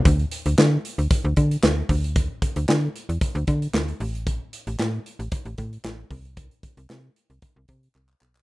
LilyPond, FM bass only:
\new Staff \with { instrumentName = "FM bass" } { \clef bass \time 4/4 \key d \dorian \tempo 4 = 114 d,8 r16 d,16 d8 r16 d,16 r16 d,16 d8 d,8 d,8~ | d,8 r16 d,16 d8 r16 e,16 r16 d,16 d8 d,8 a,,8~ | a,,8 r16 a,,16 a,8 r16 a,,16 r16 a,,16 a,8 a,,8 c,8~ | c,8 r16 c,16 c8 r16 c,16 r16 c,16 c8 c,8 b,,8 | }